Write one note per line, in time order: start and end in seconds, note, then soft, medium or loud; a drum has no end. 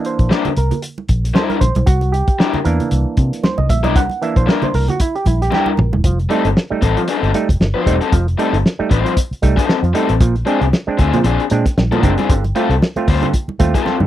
0.00 0.53 E3 medium
0.00 0.53 A#3 medium
0.00 0.53 D4 medium
0.05 0.59 C5 medium
0.05 closed hi-hat medium
0.19 0.29 A#1 medium
0.19 kick medium
0.19 closed hi-hat soft
0.29 0.46 G3 medium
0.29 0.46 D4 medium
0.29 0.47 E4 medium
0.29 0.47 A#4 medium
0.29 snare loud
0.45 muted fingered electric bass stroke soft
0.45 closed hi-hat soft
0.45 low conga medium
0.57 0.69 C2 loud
0.57 0.81 A#4 medium
0.57 closed hi-hat medium
0.71 closed hi-hat medium
0.71 low conga medium
0.82 closed hi-hat loud
0.98 muted conga soft
1.09 1.31 A#1 medium
1.09 kick medium
1.09 closed hi-hat medium
1.24 snare soft
1.24 closed hi-hat medium
1.34 1.55 G3 loud
1.34 1.55 D4 medium
1.34 1.56 E4 loud
1.34 1.56 A#4 loud
1.34 1.50 C5 medium
1.34 snare loud
1.34 muted conga soft
1.34 high conga medium
1.49 1.61 A#4 loud
1.49 closed hi-hat soft
1.49 high conga medium
1.61 1.73 A#1 loud
1.61 1.88 C5 loud
1.61 kick medium
1.61 closed hi-hat medium
1.61 low conga medium
1.75 1.85 B1 medium
1.75 closed hi-hat medium
1.75 high conga medium
1.86 2.21 C2 loud
1.86 2.14 F#4 loud
1.86 kick loud
1.86 closed hi-hat loud
1.86 muted conga soft
2.01 closed hi-hat soft
2.01 muted conga soft
2.12 2.66 G4 medium
2.12 closed hi-hat medium
2.28 kick loud
2.28 closed hi-hat soft
2.39 2.55 G3 medium
2.39 2.55 D4 medium
2.39 2.56 E4 medium
2.39 2.56 A#4 medium
2.39 snare loud
2.54 muted fingered electric bass stroke soft
2.54 closed hi-hat soft
2.54 low conga medium
2.65 2.78 E2 medium
2.65 4.20 E3 medium
2.65 4.21 A#3 medium
2.65 4.22 D4 medium
2.65 2.89 A#4 medium
2.65 closed hi-hat medium
2.80 closed hi-hat medium
2.80 low conga medium
2.91 3.04 C2 medium
2.91 closed hi-hat medium
3.17 3.30 C3 loud
3.17 kick medium
3.17 closed hi-hat medium
3.33 snare soft
3.33 closed hi-hat medium
3.43 3.58 C5 medium
3.43 snare loud
3.43 muted conga soft
3.43 high conga medium
3.58 3.69 C2 medium
3.58 3.70 D#5 loud
3.58 muted conga soft
3.58 high conga medium
3.69 3.84 A#1 medium
3.69 3.85 E5 loud
3.69 kick medium
3.69 closed hi-hat medium
3.69 low conga medium
3.83 3.96 B1 medium
3.83 3.98 G3 medium
3.83 3.97 D4 medium
3.83 3.97 E4 medium
3.83 3.97 A#4 medium
3.83 3.96 D#5 loud
3.83 closed hi-hat soft
3.83 high conga medium
3.96 4.08 C2 loud
3.96 4.23 F#5 loud
3.96 kick loud
3.96 closed hi-hat loud
4.10 closed hi-hat soft
4.10 muted conga soft
4.22 4.96 E3 medium
4.22 4.96 A#3 soft
4.22 4.96 D4 medium
4.22 4.37 E5 loud
4.22 closed hi-hat medium
4.36 4.46 A#1 medium
4.36 4.48 C5 loud
4.36 kick loud
4.36 closed hi-hat soft
4.46 4.63 G3 medium
4.46 4.63 D4 loud
4.46 4.64 E4 medium
4.46 4.64 A#4 medium
4.46 4.63 A#4 medium
4.46 snare loud
4.62 4.75 C5 medium
4.62 muted fingered electric bass stroke soft
4.62 closed hi-hat soft
4.62 low conga medium
4.74 4.86 C2 loud
4.74 4.88 A#4 loud
4.74 open hi-hat medium
4.88 5.01 F#4 medium
4.88 closed hi-hat soft
4.88 low conga medium
5.00 5.15 E4 medium
5.00 kick medium
5.00 closed hi-hat loud
5.15 5.27 G4 medium
5.15 closed hi-hat soft
5.26 5.48 A#1 medium
5.26 5.41 E4 medium
5.26 kick medium
5.26 closed hi-hat medium
5.26 high conga medium
5.42 5.53 G4 medium
5.42 snare soft
5.42 closed hi-hat medium
5.51 5.67 G3 loud
5.51 5.68 D4 loud
5.51 5.68 E4 loud
5.51 5.68 G4 medium
5.51 5.68 A#4 loud
5.51 snare medium
5.51 high conga medium
5.66 5.92 A#4 medium
5.66 high conga medium
5.77 5.91 A#1 medium
5.77 mid tom loud
5.77 low conga medium
5.93 6.03 E1 medium
5.93 floor tom loud
5.93 high conga medium
6.04 6.26 F1 loud
6.04 6.19 F3 medium
6.04 kick loud
6.04 closed hi-hat loud
6.20 closed hi-hat soft
6.29 6.45 G3 medium
6.29 6.44 G3 medium
6.29 6.44 A3 medium
6.29 6.46 C4 medium
6.29 6.46 D#4 medium
6.29 6.44 D#4 medium
6.29 6.46 A4 medium
6.29 closed hi-hat medium
6.45 6.54 G1 medium
6.45 6.50 A3 soft
6.45 6.50 D#4 soft
6.45 closed hi-hat soft
6.57 snare loud
6.70 6.82 G3 medium
6.70 6.82 A3 medium
6.70 6.82 D#4 medium
6.70 muted fingered electric bass stroke soft
6.81 6.95 A1 medium
6.81 6.98 G3 medium
6.81 6.98 C4 medium
6.81 6.98 D#4 medium
6.81 6.98 A4 medium
6.81 kick loud
6.81 closed hi-hat medium
6.97 7.08 F3 medium
6.97 closed hi-hat medium
7.08 7.29 G3 medium
7.08 7.29 C4 medium
7.08 7.29 D#4 loud
7.08 7.29 A4 loud
7.08 closed hi-hat loud
7.23 7.32 G1 medium
7.23 closed hi-hat soft
7.34 7.49 G3 medium
7.34 7.49 A3 medium
7.34 7.49 D#4 medium
7.34 closed hi-hat medium
7.49 7.59 F1 medium
7.49 kick medium
7.49 closed hi-hat medium
7.60 7.72 G1 medium
7.60 7.66 A3 soft
7.60 7.66 D#4 soft
7.60 snare loud
7.74 7.86 F3 medium
7.74 7.95 G3 medium
7.74 7.94 C4 medium
7.74 7.94 D#4 medium
7.74 7.94 C5 medium
7.86 7.99 E1 medium
7.86 8.00 G3 medium
7.86 8.01 A3 medium
7.86 8.01 D#4 medium
7.86 kick medium
7.86 closed hi-hat medium
8.01 8.12 G3 medium
8.01 8.11 C4 medium
8.01 8.11 D#4 medium
8.01 8.11 A4 medium
8.01 closed hi-hat medium
8.12 8.34 F1 loud
8.12 8.26 F3 medium
8.12 kick loud
8.12 closed hi-hat loud
8.28 closed hi-hat soft
8.38 8.54 G3 medium
8.38 8.53 G3 medium
8.38 8.52 A3 medium
8.38 8.54 C4 medium
8.38 8.54 D#4 medium
8.38 8.52 D#4 medium
8.38 8.55 A4 medium
8.38 closed hi-hat medium
8.53 8.63 G1 medium
8.53 8.58 A3 soft
8.53 8.58 D#4 soft
8.53 closed hi-hat soft
8.66 snare loud
8.79 8.90 G3 medium
8.79 8.90 A3 medium
8.79 8.90 D#4 medium
8.79 muted fingered electric bass stroke soft
8.90 9.03 A1 loud
8.90 9.11 G3 loud
8.90 9.11 C4 medium
8.90 9.11 D#4 medium
8.90 9.12 C5 medium
8.90 kick loud
8.90 closed hi-hat medium
9.05 9.16 F3 medium
9.05 closed hi-hat medium
9.17 kick loud
9.17 closed hi-hat loud
9.31 muted fingered electric bass stroke soft
9.31 closed hi-hat soft
9.42 9.55 C2 medium
9.42 9.57 G3 medium
9.42 9.57 A3 medium
9.42 9.57 D#4 medium
9.42 kick medium
9.42 closed hi-hat medium
9.56 9.77 G3 medium
9.56 9.77 C4 medium
9.56 9.76 D#4 medium
9.56 9.76 A4 medium
9.56 kick medium
9.56 snare soft
9.56 closed hi-hat medium
9.69 9.75 A3 soft
9.69 9.74 D#4 soft
9.69 snare loud
9.83 9.93 F2 medium
9.83 9.94 F3 medium
9.83 closed hi-hat soft
9.93 10.10 G3 medium
9.93 10.09 G3 medium
9.93 10.09 A3 medium
9.93 10.11 C4 loud
9.93 10.11 D#4 medium
9.93 10.09 D#4 medium
9.93 10.11 A4 medium
9.93 closed hi-hat loud
10.09 10.21 A1 medium
10.09 closed hi-hat medium
10.21 10.42 A#1 loud
10.21 10.35 A#2 medium
10.21 10.35 F3 medium
10.21 kick loud
10.21 closed hi-hat medium
10.36 closed hi-hat soft
10.45 10.62 F3 medium
10.45 10.61 G#3 medium
10.45 10.62 C4 medium
10.45 10.60 C4 medium
10.45 10.63 D4 medium
10.45 10.60 D4 medium
10.45 10.63 G#4 medium
10.45 closed hi-hat medium
10.61 10.71 C2 medium
10.61 10.66 C4 soft
10.61 10.66 D4 soft
10.61 closed hi-hat soft
10.73 snare loud
10.73 muted conga soft
10.87 10.98 G#3 medium
10.87 10.99 C4 medium
10.87 10.99 D4 medium
10.87 muted fingered electric bass stroke soft
10.98 11.11 D2 loud
10.98 11.14 F3 loud
10.98 11.15 C4 medium
10.98 11.15 D4 medium
10.98 11.15 G#4 loud
10.98 kick medium
10.98 closed hi-hat medium
11.13 11.25 A#2 medium
11.13 11.25 F3 medium
11.13 closed hi-hat medium
11.13 low conga medium
11.24 11.37 A#1 medium
11.24 11.40 F3 medium
11.24 11.41 C4 medium
11.24 11.41 D4 medium
11.24 11.41 G#4 medium
11.24 closed hi-hat loud
11.40 closed hi-hat soft
11.50 11.64 A#2 loud
11.50 11.65 G#3 medium
11.50 11.66 C4 medium
11.50 11.66 D4 loud
11.50 closed hi-hat medium
11.66 kick medium
11.66 snare soft
11.66 closed hi-hat medium
11.77 11.90 A#1 medium
11.77 11.83 C4 soft
11.77 11.83 D4 soft
11.77 snare loud
11.77 high conga medium
11.92 12.03 A#2 medium
11.92 12.03 F3 medium
11.92 12.12 F3 medium
11.92 12.12 C4 medium
11.92 12.11 D4 medium
11.92 12.11 A#4 medium
11.92 closed hi-hat soft
11.92 muted conga soft
11.92 high conga medium
12.03 12.15 F#1 loud
12.03 12.17 G#3 medium
12.03 12.18 C4 medium
12.03 12.18 D4 medium
12.03 kick medium
12.03 closed hi-hat loud
12.03 low conga medium
12.18 12.29 F3 medium
12.18 12.29 C4 medium
12.18 12.28 D4 medium
12.18 12.28 G#4 medium
12.18 closed hi-hat soft
12.18 high conga medium
12.29 12.51 G1 loud
12.29 12.44 G2 medium
12.29 12.44 D3 medium
12.29 kick loud
12.29 closed hi-hat loud
12.44 closed hi-hat soft
12.44 muted conga soft
12.55 12.71 G3 medium
12.55 12.70 A3 medium
12.55 12.69 C4 medium
12.55 12.72 C4 medium
12.55 12.70 F4 medium
12.55 12.72 F4 medium
12.55 12.72 A4 loud
12.55 closed hi-hat medium
12.69 12.79 C2 medium
12.69 12.75 C4 soft
12.69 12.75 F4 soft
12.69 closed hi-hat soft
12.82 snare loud
12.82 muted conga soft
12.96 13.07 A3 medium
12.96 13.08 C4 medium
12.96 13.08 F4 medium
12.96 muted fingered electric bass stroke soft
12.96 closed hi-hat soft
12.96 muted conga soft
13.08 13.20 D2 loud
13.08 13.24 G3 medium
13.08 13.24 C4 medium
13.08 13.25 F4 loud
13.08 13.25 C5 loud
13.08 kick loud
13.08 open hi-hat medium
13.22 13.33 G2 medium
13.22 13.33 D3 medium
13.22 closed hi-hat medium
13.22 low conga medium
13.34 kick medium
13.34 closed hi-hat medium
13.48 muted fingered electric bass stroke soft
13.48 muted conga soft
13.59 13.72 D#2 medium
13.59 13.74 A3 medium
13.59 13.74 C4 medium
13.59 13.74 F4 loud
13.59 kick medium
13.59 closed hi-hat medium
13.59 high conga medium
13.74 13.94 G3 medium
13.74 13.94 C4 medium
13.74 13.94 F4 medium
13.74 13.94 A4 medium
13.74 kick loud
13.74 snare soft
13.74 closed hi-hat medium
13.85 14.00 C4 medium
13.85 14.00 F4 medium
13.85 snare medium
13.85 high conga medium
14.00 14.07 G2 medium
14.00 14.07 D3 medium
14.00 high tom medium
14.00 high conga medium